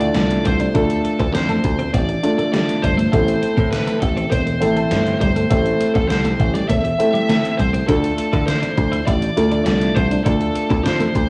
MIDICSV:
0, 0, Header, 1, 7, 480
1, 0, Start_track
1, 0, Tempo, 594059
1, 608, Time_signature, 4, 2, 24, 8
1, 9122, End_track
2, 0, Start_track
2, 0, Title_t, "Lead electric guitar"
2, 0, Program_c, 0, 29
2, 0, Note_on_c, 0, 74, 84
2, 123, Note_off_c, 0, 74, 0
2, 133, Note_on_c, 0, 74, 88
2, 353, Note_off_c, 0, 74, 0
2, 374, Note_on_c, 0, 72, 78
2, 613, Note_off_c, 0, 72, 0
2, 616, Note_on_c, 0, 69, 82
2, 1059, Note_off_c, 0, 69, 0
2, 1085, Note_on_c, 0, 72, 81
2, 1534, Note_off_c, 0, 72, 0
2, 1566, Note_on_c, 0, 74, 90
2, 2034, Note_off_c, 0, 74, 0
2, 2043, Note_on_c, 0, 74, 82
2, 2281, Note_on_c, 0, 72, 92
2, 2293, Note_off_c, 0, 74, 0
2, 2972, Note_off_c, 0, 72, 0
2, 2996, Note_on_c, 0, 71, 81
2, 3232, Note_off_c, 0, 71, 0
2, 3235, Note_on_c, 0, 69, 83
2, 3464, Note_off_c, 0, 69, 0
2, 3480, Note_on_c, 0, 72, 89
2, 4186, Note_off_c, 0, 72, 0
2, 4195, Note_on_c, 0, 72, 89
2, 4769, Note_off_c, 0, 72, 0
2, 4799, Note_on_c, 0, 69, 77
2, 4914, Note_off_c, 0, 69, 0
2, 4917, Note_on_c, 0, 72, 85
2, 5282, Note_on_c, 0, 74, 85
2, 5293, Note_off_c, 0, 72, 0
2, 5397, Note_off_c, 0, 74, 0
2, 5401, Note_on_c, 0, 76, 104
2, 6092, Note_off_c, 0, 76, 0
2, 6123, Note_on_c, 0, 72, 85
2, 6348, Note_off_c, 0, 72, 0
2, 6362, Note_on_c, 0, 69, 87
2, 6839, Note_off_c, 0, 69, 0
2, 6842, Note_on_c, 0, 72, 84
2, 7292, Note_off_c, 0, 72, 0
2, 7316, Note_on_c, 0, 74, 95
2, 7769, Note_off_c, 0, 74, 0
2, 7798, Note_on_c, 0, 74, 88
2, 8037, Note_on_c, 0, 72, 87
2, 8050, Note_off_c, 0, 74, 0
2, 8265, Note_off_c, 0, 72, 0
2, 8275, Note_on_c, 0, 69, 89
2, 8759, Note_off_c, 0, 69, 0
2, 8762, Note_on_c, 0, 72, 83
2, 9122, Note_off_c, 0, 72, 0
2, 9122, End_track
3, 0, Start_track
3, 0, Title_t, "Grand piano"
3, 0, Program_c, 1, 0
3, 0, Control_c, 1, 64, 127
3, 0, Note_on_c, 1, 57, 70
3, 0, Note_on_c, 1, 62, 62
3, 0, Note_on_c, 1, 64, 49
3, 0, Note_on_c, 1, 65, 65
3, 0, Note_on_c, 1, 69, 77
3, 442, Note_off_c, 1, 57, 0
3, 444, Note_off_c, 1, 62, 0
3, 448, Note_off_c, 1, 69, 0
3, 471, Note_off_c, 1, 65, 0
3, 601, Note_on_c, 1, 57, 68
3, 601, Note_on_c, 1, 62, 63
3, 607, Note_on_c, 1, 65, 64
3, 609, Note_on_c, 1, 69, 82
3, 1346, Note_off_c, 1, 57, 0
3, 1346, Note_off_c, 1, 62, 0
3, 1349, Note_off_c, 1, 65, 0
3, 1350, Note_off_c, 1, 69, 0
3, 1803, Note_on_c, 1, 57, 70
3, 1805, Note_on_c, 1, 62, 64
3, 1808, Note_on_c, 1, 65, 62
3, 1814, Note_on_c, 1, 69, 71
3, 2362, Note_off_c, 1, 57, 0
3, 2362, Note_off_c, 1, 62, 0
3, 2364, Note_off_c, 1, 65, 0
3, 2367, Note_off_c, 1, 69, 0
3, 2521, Note_on_c, 1, 57, 72
3, 2525, Note_on_c, 1, 59, 52
3, 2528, Note_off_c, 1, 64, 0
3, 2528, Note_on_c, 1, 64, 65
3, 2532, Note_on_c, 1, 69, 80
3, 2539, Control_c, 1, 64, 0
3, 2576, Note_on_c, 1, 60, 66
3, 2579, Note_off_c, 1, 59, 0
3, 2657, Control_c, 1, 64, 127
3, 3266, Note_off_c, 1, 57, 0
3, 3269, Note_off_c, 1, 64, 0
3, 3272, Note_off_c, 1, 69, 0
3, 3293, Note_off_c, 1, 60, 0
3, 3719, Note_on_c, 1, 57, 71
3, 3722, Note_on_c, 1, 60, 63
3, 3726, Note_on_c, 1, 64, 61
3, 3731, Note_on_c, 1, 69, 75
3, 4280, Note_off_c, 1, 57, 0
3, 4281, Note_off_c, 1, 60, 0
3, 4283, Note_off_c, 1, 64, 0
3, 4286, Note_off_c, 1, 69, 0
3, 4443, Note_on_c, 1, 57, 68
3, 4443, Note_on_c, 1, 60, 66
3, 4447, Note_on_c, 1, 64, 65
3, 4449, Note_on_c, 1, 69, 77
3, 5187, Note_off_c, 1, 57, 0
3, 5187, Note_off_c, 1, 60, 0
3, 5189, Note_off_c, 1, 64, 0
3, 5190, Note_off_c, 1, 69, 0
3, 5643, Note_on_c, 1, 57, 68
3, 5647, Note_on_c, 1, 60, 58
3, 5651, Note_on_c, 1, 64, 61
3, 5653, Note_on_c, 1, 69, 73
3, 6202, Note_off_c, 1, 57, 0
3, 6203, Note_off_c, 1, 60, 0
3, 6205, Note_off_c, 1, 64, 0
3, 6206, Note_off_c, 1, 69, 0
3, 6365, Note_on_c, 1, 57, 67
3, 6369, Note_on_c, 1, 62, 67
3, 6371, Note_on_c, 1, 65, 66
3, 6376, Note_on_c, 1, 69, 79
3, 6378, Control_c, 1, 64, 0
3, 6514, Control_c, 1, 64, 127
3, 7108, Note_off_c, 1, 57, 0
3, 7110, Note_off_c, 1, 62, 0
3, 7111, Note_off_c, 1, 65, 0
3, 7113, Note_off_c, 1, 69, 0
3, 7568, Note_on_c, 1, 57, 71
3, 7569, Note_on_c, 1, 62, 63
3, 7571, Note_on_c, 1, 65, 64
3, 7576, Note_on_c, 1, 69, 74
3, 8124, Note_off_c, 1, 57, 0
3, 8124, Note_off_c, 1, 62, 0
3, 8125, Note_off_c, 1, 65, 0
3, 8128, Note_off_c, 1, 69, 0
3, 8287, Note_on_c, 1, 57, 70
3, 8290, Note_on_c, 1, 62, 68
3, 8293, Note_on_c, 1, 65, 63
3, 8298, Note_on_c, 1, 69, 77
3, 9029, Note_off_c, 1, 57, 0
3, 9030, Note_off_c, 1, 62, 0
3, 9032, Note_off_c, 1, 65, 0
3, 9034, Note_off_c, 1, 69, 0
3, 9122, End_track
4, 0, Start_track
4, 0, Title_t, "Clean electric guitar"
4, 0, Program_c, 2, 27
4, 3, Note_on_c, 2, 62, 68
4, 88, Note_off_c, 2, 62, 0
4, 363, Note_on_c, 2, 60, 68
4, 448, Note_off_c, 2, 60, 0
4, 485, Note_on_c, 2, 62, 61
4, 569, Note_off_c, 2, 62, 0
4, 603, Note_on_c, 2, 62, 75
4, 688, Note_off_c, 2, 62, 0
4, 965, Note_on_c, 2, 60, 69
4, 1049, Note_off_c, 2, 60, 0
4, 1203, Note_on_c, 2, 57, 65
4, 1288, Note_off_c, 2, 57, 0
4, 1445, Note_on_c, 2, 60, 81
4, 1529, Note_off_c, 2, 60, 0
4, 1565, Note_on_c, 2, 60, 73
4, 1649, Note_off_c, 2, 60, 0
4, 1925, Note_on_c, 2, 57, 69
4, 2009, Note_off_c, 2, 57, 0
4, 2046, Note_on_c, 2, 55, 80
4, 2129, Note_off_c, 2, 55, 0
4, 2402, Note_on_c, 2, 57, 70
4, 2487, Note_off_c, 2, 57, 0
4, 2522, Note_on_c, 2, 57, 77
4, 2607, Note_off_c, 2, 57, 0
4, 2884, Note_on_c, 2, 60, 71
4, 2968, Note_off_c, 2, 60, 0
4, 3127, Note_on_c, 2, 57, 62
4, 3210, Note_off_c, 2, 57, 0
4, 3368, Note_on_c, 2, 60, 72
4, 3451, Note_off_c, 2, 60, 0
4, 3487, Note_on_c, 2, 60, 78
4, 3570, Note_off_c, 2, 60, 0
4, 3849, Note_on_c, 2, 57, 67
4, 3931, Note_off_c, 2, 57, 0
4, 4206, Note_on_c, 2, 55, 72
4, 4290, Note_off_c, 2, 55, 0
4, 4329, Note_on_c, 2, 57, 62
4, 4412, Note_off_c, 2, 57, 0
4, 4447, Note_on_c, 2, 57, 77
4, 4530, Note_off_c, 2, 57, 0
4, 4808, Note_on_c, 2, 60, 69
4, 4891, Note_off_c, 2, 60, 0
4, 5047, Note_on_c, 2, 57, 64
4, 5130, Note_off_c, 2, 57, 0
4, 5286, Note_on_c, 2, 55, 74
4, 5369, Note_off_c, 2, 55, 0
4, 5406, Note_on_c, 2, 57, 70
4, 5489, Note_off_c, 2, 57, 0
4, 5764, Note_on_c, 2, 55, 69
4, 5848, Note_off_c, 2, 55, 0
4, 5888, Note_on_c, 2, 57, 75
4, 5971, Note_off_c, 2, 57, 0
4, 6247, Note_on_c, 2, 60, 74
4, 6330, Note_off_c, 2, 60, 0
4, 6369, Note_on_c, 2, 62, 82
4, 6451, Note_off_c, 2, 62, 0
4, 6728, Note_on_c, 2, 64, 74
4, 6811, Note_off_c, 2, 64, 0
4, 6966, Note_on_c, 2, 62, 61
4, 7049, Note_off_c, 2, 62, 0
4, 7205, Note_on_c, 2, 64, 73
4, 7289, Note_off_c, 2, 64, 0
4, 7326, Note_on_c, 2, 64, 79
4, 7410, Note_off_c, 2, 64, 0
4, 7687, Note_on_c, 2, 62, 68
4, 7770, Note_off_c, 2, 62, 0
4, 8048, Note_on_c, 2, 60, 71
4, 8131, Note_off_c, 2, 60, 0
4, 8171, Note_on_c, 2, 62, 62
4, 8253, Note_off_c, 2, 62, 0
4, 8286, Note_on_c, 2, 62, 80
4, 8369, Note_off_c, 2, 62, 0
4, 8645, Note_on_c, 2, 60, 71
4, 8729, Note_off_c, 2, 60, 0
4, 8887, Note_on_c, 2, 57, 62
4, 8970, Note_off_c, 2, 57, 0
4, 9122, End_track
5, 0, Start_track
5, 0, Title_t, "Slap bass"
5, 0, Program_c, 3, 36
5, 129, Note_on_c, 3, 36, 86
5, 308, Note_off_c, 3, 36, 0
5, 371, Note_on_c, 3, 36, 77
5, 550, Note_off_c, 3, 36, 0
5, 608, Note_on_c, 3, 38, 99
5, 788, Note_off_c, 3, 38, 0
5, 969, Note_on_c, 3, 38, 86
5, 1058, Note_off_c, 3, 38, 0
5, 1092, Note_on_c, 3, 41, 88
5, 1270, Note_off_c, 3, 41, 0
5, 1328, Note_on_c, 3, 38, 81
5, 1508, Note_off_c, 3, 38, 0
5, 1566, Note_on_c, 3, 33, 83
5, 1747, Note_off_c, 3, 33, 0
5, 2292, Note_on_c, 3, 31, 81
5, 2470, Note_off_c, 3, 31, 0
5, 2530, Note_on_c, 3, 33, 92
5, 2709, Note_off_c, 3, 33, 0
5, 2888, Note_on_c, 3, 45, 98
5, 3068, Note_off_c, 3, 45, 0
5, 3250, Note_on_c, 3, 33, 81
5, 3429, Note_off_c, 3, 33, 0
5, 3487, Note_on_c, 3, 28, 85
5, 3732, Note_off_c, 3, 28, 0
5, 3732, Note_on_c, 3, 33, 83
5, 3910, Note_off_c, 3, 33, 0
5, 3972, Note_on_c, 3, 31, 83
5, 4151, Note_off_c, 3, 31, 0
5, 4212, Note_on_c, 3, 31, 83
5, 4391, Note_off_c, 3, 31, 0
5, 4450, Note_on_c, 3, 33, 101
5, 4629, Note_off_c, 3, 33, 0
5, 4810, Note_on_c, 3, 33, 88
5, 4899, Note_off_c, 3, 33, 0
5, 4935, Note_on_c, 3, 36, 85
5, 5112, Note_off_c, 3, 36, 0
5, 5169, Note_on_c, 3, 33, 75
5, 5348, Note_off_c, 3, 33, 0
5, 5410, Note_on_c, 3, 28, 93
5, 5589, Note_off_c, 3, 28, 0
5, 6135, Note_on_c, 3, 36, 76
5, 6312, Note_off_c, 3, 36, 0
5, 6373, Note_on_c, 3, 38, 98
5, 6551, Note_off_c, 3, 38, 0
5, 6731, Note_on_c, 3, 50, 93
5, 6910, Note_off_c, 3, 50, 0
5, 7090, Note_on_c, 3, 38, 83
5, 7269, Note_off_c, 3, 38, 0
5, 7332, Note_on_c, 3, 33, 94
5, 7511, Note_off_c, 3, 33, 0
5, 7574, Note_on_c, 3, 38, 73
5, 7751, Note_off_c, 3, 38, 0
5, 7810, Note_on_c, 3, 36, 88
5, 7989, Note_off_c, 3, 36, 0
5, 8053, Note_on_c, 3, 36, 77
5, 8231, Note_off_c, 3, 36, 0
5, 8290, Note_on_c, 3, 38, 91
5, 8469, Note_off_c, 3, 38, 0
5, 8652, Note_on_c, 3, 38, 89
5, 8740, Note_off_c, 3, 38, 0
5, 8774, Note_on_c, 3, 41, 86
5, 8952, Note_off_c, 3, 41, 0
5, 9012, Note_on_c, 3, 38, 87
5, 9122, Note_off_c, 3, 38, 0
5, 9122, End_track
6, 0, Start_track
6, 0, Title_t, "Muted clean electric guitar strokes"
6, 125, Note_on_c, 9, 29, 40
6, 205, Note_off_c, 9, 29, 0
6, 845, Note_on_c, 9, 29, 38
6, 926, Note_off_c, 9, 29, 0
6, 1325, Note_on_c, 9, 29, 39
6, 1405, Note_off_c, 9, 29, 0
6, 1687, Note_on_c, 9, 29, 42
6, 1768, Note_off_c, 9, 29, 0
6, 2287, Note_on_c, 9, 29, 40
6, 2368, Note_off_c, 9, 29, 0
6, 2764, Note_on_c, 9, 29, 39
6, 2845, Note_off_c, 9, 29, 0
6, 3248, Note_on_c, 9, 29, 40
6, 3328, Note_off_c, 9, 29, 0
6, 3607, Note_on_c, 9, 29, 41
6, 3688, Note_off_c, 9, 29, 0
6, 3967, Note_on_c, 9, 29, 41
6, 4048, Note_off_c, 9, 29, 0
6, 4691, Note_on_c, 9, 29, 41
6, 4772, Note_off_c, 9, 29, 0
6, 5167, Note_on_c, 9, 29, 39
6, 5248, Note_off_c, 9, 29, 0
6, 5526, Note_on_c, 9, 29, 42
6, 5607, Note_off_c, 9, 29, 0
6, 6128, Note_on_c, 9, 29, 41
6, 6208, Note_off_c, 9, 29, 0
6, 6608, Note_on_c, 9, 29, 38
6, 6689, Note_off_c, 9, 29, 0
6, 7085, Note_on_c, 9, 29, 38
6, 7166, Note_off_c, 9, 29, 0
6, 7447, Note_on_c, 9, 29, 40
6, 7528, Note_off_c, 9, 29, 0
6, 7808, Note_on_c, 9, 29, 42
6, 7889, Note_off_c, 9, 29, 0
6, 8527, Note_on_c, 9, 29, 40
6, 8608, Note_off_c, 9, 29, 0
6, 9006, Note_on_c, 9, 29, 40
6, 9087, Note_off_c, 9, 29, 0
6, 9122, End_track
7, 0, Start_track
7, 0, Title_t, "Drums"
7, 6, Note_on_c, 9, 42, 43
7, 87, Note_off_c, 9, 42, 0
7, 118, Note_on_c, 9, 38, 102
7, 120, Note_on_c, 9, 42, 74
7, 199, Note_off_c, 9, 38, 0
7, 201, Note_off_c, 9, 42, 0
7, 248, Note_on_c, 9, 42, 52
7, 329, Note_off_c, 9, 42, 0
7, 366, Note_on_c, 9, 42, 63
7, 369, Note_on_c, 9, 36, 86
7, 447, Note_off_c, 9, 42, 0
7, 450, Note_off_c, 9, 36, 0
7, 484, Note_on_c, 9, 42, 47
7, 565, Note_off_c, 9, 42, 0
7, 606, Note_on_c, 9, 42, 86
7, 607, Note_on_c, 9, 36, 100
7, 687, Note_off_c, 9, 36, 0
7, 687, Note_off_c, 9, 42, 0
7, 728, Note_on_c, 9, 42, 51
7, 808, Note_off_c, 9, 42, 0
7, 848, Note_on_c, 9, 42, 71
7, 928, Note_off_c, 9, 42, 0
7, 967, Note_on_c, 9, 36, 80
7, 971, Note_on_c, 9, 42, 42
7, 1048, Note_off_c, 9, 36, 0
7, 1052, Note_off_c, 9, 42, 0
7, 1089, Note_on_c, 9, 38, 95
7, 1089, Note_on_c, 9, 42, 77
7, 1170, Note_off_c, 9, 38, 0
7, 1170, Note_off_c, 9, 42, 0
7, 1206, Note_on_c, 9, 42, 45
7, 1286, Note_off_c, 9, 42, 0
7, 1324, Note_on_c, 9, 42, 57
7, 1327, Note_on_c, 9, 36, 81
7, 1405, Note_off_c, 9, 42, 0
7, 1407, Note_off_c, 9, 36, 0
7, 1448, Note_on_c, 9, 42, 45
7, 1529, Note_off_c, 9, 42, 0
7, 1566, Note_on_c, 9, 36, 82
7, 1568, Note_on_c, 9, 42, 80
7, 1647, Note_off_c, 9, 36, 0
7, 1649, Note_off_c, 9, 42, 0
7, 1687, Note_on_c, 9, 42, 44
7, 1768, Note_off_c, 9, 42, 0
7, 1807, Note_on_c, 9, 42, 64
7, 1887, Note_off_c, 9, 42, 0
7, 1930, Note_on_c, 9, 42, 40
7, 2011, Note_off_c, 9, 42, 0
7, 2049, Note_on_c, 9, 38, 102
7, 2052, Note_on_c, 9, 42, 73
7, 2130, Note_off_c, 9, 38, 0
7, 2132, Note_off_c, 9, 42, 0
7, 2174, Note_on_c, 9, 42, 51
7, 2255, Note_off_c, 9, 42, 0
7, 2292, Note_on_c, 9, 36, 86
7, 2294, Note_on_c, 9, 42, 67
7, 2373, Note_off_c, 9, 36, 0
7, 2374, Note_off_c, 9, 42, 0
7, 2416, Note_on_c, 9, 42, 49
7, 2497, Note_off_c, 9, 42, 0
7, 2530, Note_on_c, 9, 36, 105
7, 2533, Note_on_c, 9, 42, 91
7, 2611, Note_off_c, 9, 36, 0
7, 2614, Note_off_c, 9, 42, 0
7, 2652, Note_on_c, 9, 42, 52
7, 2733, Note_off_c, 9, 42, 0
7, 2769, Note_on_c, 9, 42, 67
7, 2850, Note_off_c, 9, 42, 0
7, 2889, Note_on_c, 9, 36, 83
7, 2895, Note_on_c, 9, 42, 40
7, 2970, Note_off_c, 9, 36, 0
7, 2975, Note_off_c, 9, 42, 0
7, 3011, Note_on_c, 9, 38, 91
7, 3011, Note_on_c, 9, 42, 79
7, 3092, Note_off_c, 9, 38, 0
7, 3092, Note_off_c, 9, 42, 0
7, 3131, Note_on_c, 9, 42, 49
7, 3211, Note_off_c, 9, 42, 0
7, 3248, Note_on_c, 9, 42, 61
7, 3249, Note_on_c, 9, 36, 80
7, 3329, Note_off_c, 9, 42, 0
7, 3330, Note_off_c, 9, 36, 0
7, 3372, Note_on_c, 9, 42, 44
7, 3453, Note_off_c, 9, 42, 0
7, 3488, Note_on_c, 9, 36, 77
7, 3492, Note_on_c, 9, 42, 82
7, 3569, Note_off_c, 9, 36, 0
7, 3573, Note_off_c, 9, 42, 0
7, 3610, Note_on_c, 9, 42, 47
7, 3691, Note_off_c, 9, 42, 0
7, 3730, Note_on_c, 9, 42, 62
7, 3811, Note_off_c, 9, 42, 0
7, 3852, Note_on_c, 9, 42, 41
7, 3932, Note_off_c, 9, 42, 0
7, 3968, Note_on_c, 9, 38, 100
7, 3970, Note_on_c, 9, 42, 78
7, 4048, Note_off_c, 9, 38, 0
7, 4051, Note_off_c, 9, 42, 0
7, 4093, Note_on_c, 9, 42, 46
7, 4173, Note_off_c, 9, 42, 0
7, 4212, Note_on_c, 9, 36, 88
7, 4212, Note_on_c, 9, 42, 65
7, 4292, Note_off_c, 9, 36, 0
7, 4293, Note_off_c, 9, 42, 0
7, 4332, Note_on_c, 9, 42, 49
7, 4413, Note_off_c, 9, 42, 0
7, 4448, Note_on_c, 9, 42, 84
7, 4449, Note_on_c, 9, 36, 106
7, 4529, Note_off_c, 9, 42, 0
7, 4530, Note_off_c, 9, 36, 0
7, 4570, Note_on_c, 9, 42, 53
7, 4651, Note_off_c, 9, 42, 0
7, 4690, Note_on_c, 9, 42, 69
7, 4771, Note_off_c, 9, 42, 0
7, 4809, Note_on_c, 9, 36, 82
7, 4811, Note_on_c, 9, 42, 40
7, 4890, Note_off_c, 9, 36, 0
7, 4892, Note_off_c, 9, 42, 0
7, 4932, Note_on_c, 9, 38, 98
7, 4932, Note_on_c, 9, 42, 81
7, 5012, Note_off_c, 9, 42, 0
7, 5013, Note_off_c, 9, 38, 0
7, 5049, Note_on_c, 9, 42, 47
7, 5130, Note_off_c, 9, 42, 0
7, 5169, Note_on_c, 9, 42, 58
7, 5170, Note_on_c, 9, 36, 83
7, 5250, Note_off_c, 9, 36, 0
7, 5250, Note_off_c, 9, 42, 0
7, 5293, Note_on_c, 9, 42, 48
7, 5374, Note_off_c, 9, 42, 0
7, 5409, Note_on_c, 9, 36, 84
7, 5411, Note_on_c, 9, 42, 84
7, 5490, Note_off_c, 9, 36, 0
7, 5492, Note_off_c, 9, 42, 0
7, 5533, Note_on_c, 9, 42, 45
7, 5614, Note_off_c, 9, 42, 0
7, 5654, Note_on_c, 9, 42, 65
7, 5735, Note_off_c, 9, 42, 0
7, 5779, Note_on_c, 9, 42, 42
7, 5859, Note_off_c, 9, 42, 0
7, 5894, Note_on_c, 9, 38, 107
7, 5896, Note_on_c, 9, 42, 71
7, 5975, Note_off_c, 9, 38, 0
7, 5977, Note_off_c, 9, 42, 0
7, 6020, Note_on_c, 9, 42, 48
7, 6101, Note_off_c, 9, 42, 0
7, 6135, Note_on_c, 9, 36, 84
7, 6137, Note_on_c, 9, 42, 68
7, 6215, Note_off_c, 9, 36, 0
7, 6217, Note_off_c, 9, 42, 0
7, 6256, Note_on_c, 9, 42, 48
7, 6337, Note_off_c, 9, 42, 0
7, 6372, Note_on_c, 9, 36, 107
7, 6372, Note_on_c, 9, 42, 83
7, 6452, Note_off_c, 9, 36, 0
7, 6453, Note_off_c, 9, 42, 0
7, 6495, Note_on_c, 9, 42, 50
7, 6576, Note_off_c, 9, 42, 0
7, 6611, Note_on_c, 9, 42, 71
7, 6692, Note_off_c, 9, 42, 0
7, 6731, Note_on_c, 9, 36, 80
7, 6734, Note_on_c, 9, 42, 42
7, 6812, Note_off_c, 9, 36, 0
7, 6815, Note_off_c, 9, 42, 0
7, 6852, Note_on_c, 9, 38, 96
7, 6852, Note_on_c, 9, 42, 79
7, 6933, Note_off_c, 9, 38, 0
7, 6933, Note_off_c, 9, 42, 0
7, 6972, Note_on_c, 9, 42, 47
7, 7053, Note_off_c, 9, 42, 0
7, 7091, Note_on_c, 9, 36, 79
7, 7092, Note_on_c, 9, 42, 56
7, 7172, Note_off_c, 9, 36, 0
7, 7173, Note_off_c, 9, 42, 0
7, 7215, Note_on_c, 9, 42, 47
7, 7296, Note_off_c, 9, 42, 0
7, 7331, Note_on_c, 9, 36, 83
7, 7334, Note_on_c, 9, 42, 83
7, 7412, Note_off_c, 9, 36, 0
7, 7415, Note_off_c, 9, 42, 0
7, 7452, Note_on_c, 9, 42, 45
7, 7533, Note_off_c, 9, 42, 0
7, 7574, Note_on_c, 9, 42, 69
7, 7655, Note_off_c, 9, 42, 0
7, 7689, Note_on_c, 9, 42, 41
7, 7770, Note_off_c, 9, 42, 0
7, 7805, Note_on_c, 9, 38, 103
7, 7807, Note_on_c, 9, 42, 75
7, 7885, Note_off_c, 9, 38, 0
7, 7888, Note_off_c, 9, 42, 0
7, 7930, Note_on_c, 9, 42, 48
7, 8010, Note_off_c, 9, 42, 0
7, 8052, Note_on_c, 9, 36, 89
7, 8052, Note_on_c, 9, 42, 66
7, 8133, Note_off_c, 9, 36, 0
7, 8133, Note_off_c, 9, 42, 0
7, 8171, Note_on_c, 9, 42, 48
7, 8252, Note_off_c, 9, 42, 0
7, 8290, Note_on_c, 9, 36, 105
7, 8291, Note_on_c, 9, 42, 84
7, 8371, Note_off_c, 9, 36, 0
7, 8371, Note_off_c, 9, 42, 0
7, 8409, Note_on_c, 9, 42, 53
7, 8490, Note_off_c, 9, 42, 0
7, 8528, Note_on_c, 9, 42, 69
7, 8609, Note_off_c, 9, 42, 0
7, 8649, Note_on_c, 9, 36, 80
7, 8652, Note_on_c, 9, 42, 40
7, 8730, Note_off_c, 9, 36, 0
7, 8732, Note_off_c, 9, 42, 0
7, 8773, Note_on_c, 9, 38, 100
7, 8773, Note_on_c, 9, 42, 77
7, 8853, Note_off_c, 9, 42, 0
7, 8854, Note_off_c, 9, 38, 0
7, 8891, Note_on_c, 9, 42, 49
7, 8972, Note_off_c, 9, 42, 0
7, 9010, Note_on_c, 9, 36, 81
7, 9013, Note_on_c, 9, 42, 57
7, 9091, Note_off_c, 9, 36, 0
7, 9094, Note_off_c, 9, 42, 0
7, 9122, End_track
0, 0, End_of_file